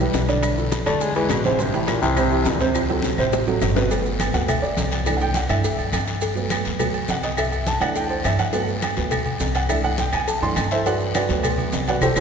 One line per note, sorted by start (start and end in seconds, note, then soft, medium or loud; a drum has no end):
0.00 0.11 B1 medium
0.00 0.24 G3 medium
0.00 0.24 G4 medium
0.00 0.24 B4 medium
0.00 maracas soft
0.14 0.81 B1 medium
0.14 high bongo medium
0.14 low bongo medium
0.14 high conga medium
0.14 high timbale medium
0.14 low timbale medium
0.14 short guiro medium
0.14 maracas medium
0.28 0.52 D3 medium
0.28 0.52 D4 medium
0.28 0.53 D5 medium
0.28 high conga medium
0.28 high timbale medium
0.28 short guiro medium
0.28 maracas soft
0.43 high bongo medium
0.43 high conga soft
0.43 high timbale medium
0.43 long guiro medium
0.43 claves medium
0.43 maracas medium
0.58 0.81 F3 medium
0.58 0.81 F4 medium
0.58 0.82 A4 medium
0.58 high conga soft
0.58 maracas soft
0.72 high bongo medium
0.72 high conga medium
0.72 high timbale medium
0.72 low timbale medium
0.72 short guiro medium
0.72 maracas medium
0.86 1.27 E2 medium
0.86 1.10 D3 medium
0.86 1.03 A3 medium
0.86 1.10 D4 medium
0.86 1.10 D5 medium
0.86 high bongo soft
0.86 high timbale medium
0.86 short guiro medium
0.86 claves medium
0.86 maracas soft
1.01 1.15 G#3 loud
1.01 high bongo medium
1.01 high conga soft
1.01 long guiro medium
1.01 maracas medium
1.15 1.32 E3 loud
1.15 1.39 G#3 medium
1.15 1.40 G#4 medium
1.15 1.40 B4 medium
1.15 high bongo soft
1.15 high conga soft
1.15 high timbale medium
1.15 maracas soft
1.29 1.97 A1 medium
1.29 1.47 B2 medium
1.29 high bongo medium
1.29 low bongo medium
1.29 high conga medium
1.29 high timbale medium
1.29 low timbale medium
1.29 short guiro medium
1.29 claves medium
1.29 maracas medium
1.44 1.62 G#2 medium
1.44 1.57 C3 medium
1.44 1.57 C4 medium
1.44 1.57 C5 medium
1.44 high bongo soft
1.44 high conga medium
1.44 short guiro medium
1.44 maracas soft
1.59 1.76 G2 medium
1.59 1.71 C3 medium
1.59 1.72 C4 medium
1.59 1.72 C5 medium
1.59 high bongo medium
1.59 high conga soft
1.59 long guiro medium
1.59 maracas medium
1.74 1.90 A2 medium
1.74 1.98 E3 medium
1.74 1.98 E4 medium
1.74 1.98 G4 medium
1.74 high conga soft
1.74 high timbale medium
1.74 maracas soft
1.88 2.01 A#2 medium
1.88 high bongo medium
1.88 high conga medium
1.88 high timbale medium
1.88 low timbale medium
1.88 short guiro medium
1.88 claves medium
1.88 maracas medium
2.02 2.43 C2 medium
2.02 2.70 C3 loud
2.02 2.15 E3 medium
2.02 2.15 E4 medium
2.02 2.15 G4 medium
2.02 short guiro medium
2.02 maracas soft
2.16 2.29 C3 medium
2.16 2.29 C4 medium
2.16 2.30 C5 medium
2.16 high bongo medium
2.16 high conga soft
2.16 low conga medium
2.16 high timbale medium
2.16 long guiro medium
2.16 claves medium
2.16 maracas medium
2.31 2.55 E3 medium
2.31 2.55 E4 medium
2.31 2.56 G4 medium
2.31 high conga soft
2.31 maracas soft
2.45 3.12 D2 loud
2.45 high bongo medium
2.45 low bongo medium
2.45 high conga medium
2.45 high timbale medium
2.45 low timbale medium
2.45 short guiro medium
2.45 maracas medium
2.60 2.84 C3 medium
2.60 2.84 C4 medium
2.60 2.84 C5 medium
2.60 high timbale medium
2.60 short guiro medium
2.60 maracas soft
2.74 high bongo medium
2.74 high conga soft
2.74 high timbale medium
2.74 long guiro medium
2.74 claves medium
2.74 maracas medium
2.89 3.13 F#3 medium
2.89 3.13 F#4 medium
2.89 3.13 A4 medium
2.89 high conga soft
2.89 high timbale medium
2.89 maracas soft
3.02 high bongo medium
3.02 high conga medium
3.02 short guiro medium
3.02 maracas medium
3.18 3.58 A1 loud
3.18 3.42 C3 medium
3.18 3.42 C4 medium
3.18 3.42 C5 medium
3.18 high bongo soft
3.18 short guiro medium
3.18 claves medium
3.18 maracas soft
3.32 high bongo loud
3.32 high conga soft
3.32 long guiro medium
3.32 maracas medium
3.47 3.71 F#3 medium
3.47 3.71 F#4 medium
3.47 3.71 A4 medium
3.47 high conga soft
3.47 low timbale medium
3.47 maracas soft
3.61 4.28 G1 loud
3.61 low bongo medium
3.61 high conga medium
3.61 low timbale medium
3.61 short guiro medium
3.61 claves medium
3.61 maracas medium
3.76 3.88 B2 medium
3.76 3.88 B3 medium
3.76 3.88 B4 medium
3.76 low bongo loud
3.76 low timbale medium
3.76 short guiro medium
3.76 maracas soft
3.90 4.31 F#3 medium
3.90 4.32 A3 soft
3.90 4.32 B3 medium
3.90 cowbell loud
3.90 high conga soft
3.90 low agogo medium
3.90 long guiro medium
3.90 maracas medium
4.06 high conga soft
4.06 maracas soft
4.20 cowbell medium
4.20 high conga loud
4.20 low timbale medium
4.20 low agogo loud
4.20 short guiro medium
4.20 claves medium
4.20 maracas medium
4.34 4.74 D2 loud
4.34 4.47 F#3 soft
4.34 4.47 A3 soft
4.34 4.47 B3 medium
4.34 4.48 F#5 medium
4.34 cowbell medium
4.34 short guiro medium
4.34 maracas soft
4.48 4.62 E5 medium
4.48 cowbell loud
4.48 high conga soft
4.48 low conga medium
4.48 low agogo loud
4.48 long guiro medium
4.48 claves medium
4.48 maracas medium
4.62 4.89 D5 medium
4.62 high conga soft
4.62 low agogo medium
4.62 maracas soft
4.77 5.44 C2 medium
4.77 cowbell medium
4.77 high conga medium
4.77 low timbale medium
4.77 short guiro medium
4.77 maracas medium
4.92 cowbell medium
4.92 low agogo medium
4.92 short guiro medium
4.92 maracas soft
5.06 5.25 E3 medium
5.06 5.26 A3 soft
5.06 5.26 D4 medium
5.06 cowbell loud
5.06 high conga soft
5.06 low agogo loud
5.06 long guiro medium
5.06 claves medium
5.06 maracas medium
5.17 5.19 F#5 medium
5.17 high conga soft
5.21 5.35 G5 loud
5.21 low agogo medium
5.21 maracas soft
5.34 5.49 F#5 medium
5.34 cowbell medium
5.34 high conga medium
5.34 low timbale medium
5.34 short guiro medium
5.34 maracas medium
5.49 5.76 G2 medium
5.49 5.62 E3 medium
5.49 5.63 A3 soft
5.49 5.63 D4 medium
5.49 5.77 E5 medium
5.49 cowbell medium
5.49 low agogo loud
5.49 short guiro medium
5.49 claves medium
5.49 maracas soft
5.64 cowbell loud
5.64 high conga soft
5.64 long guiro medium
5.64 maracas medium
5.78 5.92 F#2 medium
5.78 high conga soft
5.78 low agogo medium
5.78 maracas soft
5.93 6.60 G2 medium
5.93 cowbell medium
5.93 high conga medium
5.93 low timbale medium
5.93 low agogo loud
5.93 short guiro medium
5.93 claves medium
5.93 maracas medium
6.08 cowbell medium
6.08 short guiro medium
6.08 maracas soft
6.21 cowbell loud
6.21 high conga soft
6.21 low agogo medium
6.21 long guiro medium
6.21 maracas medium
6.35 6.78 F#3 medium
6.35 6.78 A3 medium
6.35 6.78 B3 medium
6.35 high conga soft
6.35 maracas soft
6.50 cowbell medium
6.50 high conga loud
6.50 low timbale medium
6.50 low agogo loud
6.50 short guiro medium
6.50 claves medium
6.50 maracas medium
6.65 7.06 D2 medium
6.65 cowbell medium
6.65 short guiro medium
6.65 maracas soft
6.79 6.93 F#3 medium
6.79 6.93 A3 soft
6.79 6.93 B3 medium
6.79 cowbell loud
6.79 high conga soft
6.79 low conga medium
6.79 low agogo loud
6.79 long guiro medium
6.79 claves medium
6.79 maracas medium
6.94 high conga soft
6.94 low agogo medium
6.94 maracas soft
7.08 7.76 C2 medium
7.08 7.24 F#5 medium
7.08 cowbell medium
7.08 high conga medium
7.08 low timbale medium
7.08 short guiro medium
7.08 maracas medium
7.23 7.38 D#5 medium
7.23 cowbell medium
7.23 low agogo medium
7.23 short guiro medium
7.23 maracas soft
7.37 7.65 E5 medium
7.37 cowbell loud
7.37 high conga soft
7.37 low agogo loud
7.37 long guiro medium
7.37 claves medium
7.37 maracas medium
7.52 high conga soft
7.52 low agogo medium
7.52 maracas soft
7.66 7.81 A5 loud
7.66 cowbell medium
7.66 high conga medium
7.66 low timbale medium
7.66 short guiro medium
7.66 maracas medium
7.80 8.21 E2 medium
7.80 8.50 E3 medium
7.80 8.50 A3 soft
7.80 8.50 D4 medium
7.80 7.95 F#5 loud
7.80 cowbell medium
7.80 low agogo loud
7.80 short guiro medium
7.80 claves medium
7.80 maracas soft
7.95 8.10 G5 medium
7.95 cowbell loud
7.95 high conga soft
7.95 long guiro medium
7.95 maracas medium
8.10 8.24 C5 medium
8.10 high conga soft
8.10 low agogo medium
8.10 maracas soft
8.24 8.92 G2 medium
8.24 8.39 E5 medium
8.24 cowbell medium
8.24 high conga medium
8.24 low timbale medium
8.24 low agogo loud
8.24 short guiro medium
8.24 claves medium
8.24 maracas medium
8.39 8.66 F#5 medium
8.39 cowbell medium
8.39 short guiro medium
8.39 maracas soft
8.53 8.73 F#3 medium
8.53 8.73 A3 medium
8.53 8.73 B3 medium
8.53 cowbell loud
8.53 high conga soft
8.53 low agogo medium
8.53 long guiro medium
8.53 maracas medium
8.68 high conga soft
8.68 maracas soft
8.82 cowbell medium
8.82 high conga medium
8.82 low timbale medium
8.82 low agogo loud
8.82 short guiro medium
8.82 claves medium
8.82 maracas medium
8.97 9.38 D2 medium
8.97 9.10 F#3 soft
8.97 9.10 A3 soft
8.97 9.11 B3 medium
8.97 cowbell medium
8.97 short guiro medium
8.97 maracas soft
9.11 cowbell loud
9.11 high conga soft
9.11 low conga medium
9.11 low agogo loud
9.11 long guiro medium
9.11 claves medium
9.11 maracas medium
9.26 high conga soft
9.26 low conga medium
9.26 low agogo medium
9.26 maracas soft
9.40 10.07 C2 medium
9.40 cowbell medium
9.40 high conga medium
9.40 low timbale medium
9.40 short guiro medium
9.40 maracas medium
9.55 9.70 F#5 medium
9.55 cowbell medium
9.55 low agogo medium
9.55 short guiro medium
9.55 maracas soft
9.69 9.89 E3 medium
9.69 9.89 A3 medium
9.69 9.89 D4 medium
9.69 9.84 E5 medium
9.69 cowbell loud
9.69 high conga soft
9.69 low agogo loud
9.69 long guiro medium
9.69 claves medium
9.69 maracas medium
9.83 9.98 F#5 loud
9.83 high conga soft
9.83 low agogo medium
9.83 maracas soft
9.98 10.13 G5 medium
9.98 cowbell medium
9.98 high conga medium
9.98 low timbale medium
9.98 short guiro medium
9.98 maracas medium
10.13 10.40 E2 medium
10.13 10.28 G#5 medium
10.13 cowbell medium
10.13 low agogo loud
10.13 short guiro medium
10.13 claves medium
10.13 maracas soft
10.28 10.42 A5 medium
10.28 cowbell loud
10.28 high conga soft
10.28 long guiro medium
10.28 maracas medium
10.42 10.56 F#2 medium
10.42 10.55 E3 medium
10.42 10.55 A3 soft
10.42 10.56 D4 medium
10.42 10.51 C6 loud
10.42 high conga soft
10.42 low agogo medium
10.42 maracas soft
10.56 11.24 G2 medium
10.56 cowbell medium
10.56 high conga medium
10.56 low timbale medium
10.56 low agogo loud
10.56 short guiro medium
10.56 claves medium
10.56 maracas medium
10.71 10.86 E4 medium
10.71 10.86 A4 medium
10.71 10.86 C5 medium
10.71 10.86 E5 medium
10.71 cowbell medium
10.71 short guiro medium
10.71 maracas soft
10.86 11.13 F#4 medium
10.86 11.13 B4 medium
10.86 11.13 D5 medium
10.86 11.13 F#5 medium
10.86 cowbell loud
10.86 high conga soft
10.86 low agogo medium
10.86 long guiro medium
10.86 maracas medium
11.00 high conga soft
11.00 maracas soft
11.15 11.42 F#4 medium
11.15 11.42 B4 medium
11.15 11.42 D5 medium
11.15 11.42 F#5 medium
11.15 cowbell medium
11.15 high conga loud
11.15 low timbale medium
11.15 low agogo loud
11.15 short guiro medium
11.15 claves medium
11.15 maracas medium
11.29 11.70 D2 medium
11.29 11.98 F#3 medium
11.29 11.99 A3 medium
11.29 11.99 B3 medium
11.29 cowbell medium
11.29 short guiro medium
11.29 maracas soft
11.43 cowbell loud
11.43 high conga soft
11.43 low conga medium
11.43 low agogo loud
11.43 long guiro medium
11.43 claves medium
11.43 maracas medium
11.58 high conga soft
11.58 low conga medium
11.58 low agogo medium
11.58 maracas soft
11.72 12.00 C2 medium
11.72 cowbell medium
11.72 high conga medium
11.72 low timbale medium
11.72 short guiro medium
11.72 maracas medium
11.87 12.02 F#4 medium
11.87 12.02 B4 medium
11.87 12.02 D5 medium
11.87 12.02 F#5 medium
11.87 cowbell medium
11.87 low agogo medium
11.87 short guiro medium
11.87 maracas soft
12.01 12.13 C2 medium
12.01 12.12 G4 medium
12.01 12.12 A4 loud
12.01 12.12 C5 medium
12.01 cowbell loud
12.01 low conga loud
12.01 high timbale loud
12.01 long guiro loud
12.01 claves loud
12.01 maracas medium
12.16 12.20 C2 loud
12.16 low conga loud
12.16 high timbale loud
12.16 claves loud
12.16 maracas loud